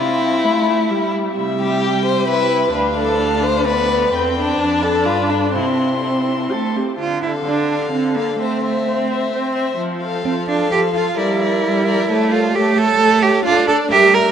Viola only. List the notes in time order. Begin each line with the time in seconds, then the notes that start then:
0.00 C4
0.44 A3
0.90 G3
1.35 G3
2.27 E4
2.72 D4
3.66 B3
4.14 C4
4.60 D4
5.55 E4
6.04 E4
6.52 A4
6.77 G4
7.00 D3
7.45 D3
7.92 D3
8.39 C4
8.86 C4
9.33 C4
9.78 F3
10.26 F3
10.72 F3
11.18 G3
11.65 G3
12.11 A3
12.57 A3
13.00 A3
13.46 D4
13.92 G3